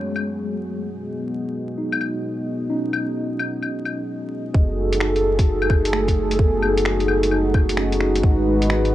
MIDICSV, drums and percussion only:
0, 0, Header, 1, 2, 480
1, 0, Start_track
1, 0, Tempo, 461538
1, 887, Time_signature, 4, 2, 24, 8
1, 9307, End_track
2, 0, Start_track
2, 0, Title_t, "Drums"
2, 163, Note_on_c, 9, 75, 35
2, 267, Note_off_c, 9, 75, 0
2, 2001, Note_on_c, 9, 75, 56
2, 2088, Note_off_c, 9, 75, 0
2, 2088, Note_on_c, 9, 75, 32
2, 2192, Note_off_c, 9, 75, 0
2, 3049, Note_on_c, 9, 75, 45
2, 3153, Note_off_c, 9, 75, 0
2, 3529, Note_on_c, 9, 75, 44
2, 3633, Note_off_c, 9, 75, 0
2, 3770, Note_on_c, 9, 75, 30
2, 3874, Note_off_c, 9, 75, 0
2, 4008, Note_on_c, 9, 75, 33
2, 4112, Note_off_c, 9, 75, 0
2, 4726, Note_on_c, 9, 36, 117
2, 4830, Note_off_c, 9, 36, 0
2, 5122, Note_on_c, 9, 42, 57
2, 5204, Note_on_c, 9, 26, 102
2, 5226, Note_off_c, 9, 42, 0
2, 5308, Note_off_c, 9, 26, 0
2, 5364, Note_on_c, 9, 42, 32
2, 5468, Note_off_c, 9, 42, 0
2, 5603, Note_on_c, 9, 36, 103
2, 5604, Note_on_c, 9, 42, 56
2, 5707, Note_off_c, 9, 36, 0
2, 5708, Note_off_c, 9, 42, 0
2, 5843, Note_on_c, 9, 75, 66
2, 5926, Note_on_c, 9, 36, 102
2, 5929, Note_off_c, 9, 75, 0
2, 5929, Note_on_c, 9, 75, 39
2, 6030, Note_off_c, 9, 36, 0
2, 6033, Note_off_c, 9, 75, 0
2, 6086, Note_on_c, 9, 42, 61
2, 6168, Note_on_c, 9, 26, 101
2, 6190, Note_off_c, 9, 42, 0
2, 6272, Note_off_c, 9, 26, 0
2, 6323, Note_on_c, 9, 36, 60
2, 6327, Note_on_c, 9, 42, 45
2, 6427, Note_off_c, 9, 36, 0
2, 6431, Note_off_c, 9, 42, 0
2, 6564, Note_on_c, 9, 42, 57
2, 6646, Note_on_c, 9, 36, 120
2, 6668, Note_off_c, 9, 42, 0
2, 6750, Note_off_c, 9, 36, 0
2, 6889, Note_on_c, 9, 75, 50
2, 6993, Note_off_c, 9, 75, 0
2, 7045, Note_on_c, 9, 42, 59
2, 7126, Note_on_c, 9, 26, 110
2, 7149, Note_off_c, 9, 42, 0
2, 7230, Note_off_c, 9, 26, 0
2, 7282, Note_on_c, 9, 42, 31
2, 7365, Note_on_c, 9, 75, 52
2, 7386, Note_off_c, 9, 42, 0
2, 7469, Note_off_c, 9, 75, 0
2, 7521, Note_on_c, 9, 42, 60
2, 7606, Note_on_c, 9, 75, 37
2, 7625, Note_off_c, 9, 42, 0
2, 7710, Note_off_c, 9, 75, 0
2, 7843, Note_on_c, 9, 36, 107
2, 7847, Note_on_c, 9, 75, 39
2, 7947, Note_off_c, 9, 36, 0
2, 7951, Note_off_c, 9, 75, 0
2, 8000, Note_on_c, 9, 42, 59
2, 8083, Note_on_c, 9, 26, 108
2, 8104, Note_off_c, 9, 42, 0
2, 8187, Note_off_c, 9, 26, 0
2, 8241, Note_on_c, 9, 42, 47
2, 8326, Note_on_c, 9, 26, 60
2, 8345, Note_off_c, 9, 42, 0
2, 8430, Note_off_c, 9, 26, 0
2, 8482, Note_on_c, 9, 42, 58
2, 8564, Note_on_c, 9, 36, 126
2, 8586, Note_off_c, 9, 42, 0
2, 8668, Note_off_c, 9, 36, 0
2, 8963, Note_on_c, 9, 42, 58
2, 9047, Note_on_c, 9, 26, 115
2, 9067, Note_off_c, 9, 42, 0
2, 9151, Note_off_c, 9, 26, 0
2, 9204, Note_on_c, 9, 42, 32
2, 9307, Note_off_c, 9, 42, 0
2, 9307, End_track
0, 0, End_of_file